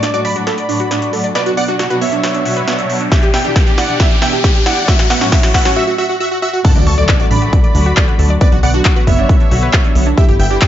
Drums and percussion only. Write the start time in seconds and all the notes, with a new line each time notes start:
0.03 snare, closed hi-hat
0.14 closed hi-hat
0.25 open hi-hat
0.36 closed hi-hat
0.47 snare, closed hi-hat
0.58 closed hi-hat
0.69 open hi-hat
0.80 closed hi-hat
0.91 snare, closed hi-hat
1.02 closed hi-hat
1.13 open hi-hat
1.24 closed hi-hat
1.35 snare, closed hi-hat
1.46 closed hi-hat
1.57 open hi-hat
1.68 closed hi-hat
1.79 snare, closed hi-hat
1.90 closed hi-hat
2.01 open hi-hat
2.12 closed hi-hat
2.24 snare, closed hi-hat
2.35 closed hi-hat
2.46 open hi-hat
2.57 closed hi-hat
2.68 snare, closed hi-hat
2.79 closed hi-hat
2.90 open hi-hat
3.01 closed hi-hat
3.12 kick, snare, closed hi-hat
3.23 closed hi-hat
3.34 snare, open hi-hat
3.45 closed hi-hat
3.56 kick, snare, closed hi-hat
3.67 closed hi-hat
3.78 snare, open hi-hat
3.89 closed hi-hat
4.00 kick, snare, closed hi-hat
4.11 closed hi-hat
4.22 snare, open hi-hat
4.33 closed hi-hat
4.44 kick, snare, closed hi-hat
4.55 closed hi-hat
4.66 snare, open hi-hat
4.77 closed hi-hat
4.88 kick, snare, closed hi-hat
4.99 snare, closed hi-hat
5.10 snare, open hi-hat
5.21 snare
5.32 kick, snare, closed hi-hat
5.43 snare, closed hi-hat
5.54 kick, snare, open hi-hat
5.65 snare, closed hi-hat
6.65 kick, closed hi-hat, crash
6.76 closed hi-hat
6.87 open hi-hat
6.98 closed hi-hat
7.09 kick, clap, closed hi-hat
7.20 closed hi-hat
7.31 open hi-hat
7.42 closed hi-hat
7.53 kick, closed hi-hat
7.64 closed hi-hat
7.75 open hi-hat
7.86 closed hi-hat
7.97 kick, clap, closed hi-hat
8.08 closed hi-hat
8.19 open hi-hat
8.30 closed hi-hat
8.41 kick, closed hi-hat
8.52 closed hi-hat
8.63 open hi-hat
8.74 closed hi-hat
8.85 kick, clap, closed hi-hat
8.96 closed hi-hat
9.07 kick, open hi-hat
9.18 closed hi-hat
9.29 kick, closed hi-hat
9.40 closed hi-hat
9.51 open hi-hat
9.73 kick, clap, closed hi-hat
9.84 closed hi-hat
9.95 open hi-hat
10.18 kick, closed hi-hat
10.29 closed hi-hat
10.40 open hi-hat
10.51 closed hi-hat
10.62 kick, clap, closed hi-hat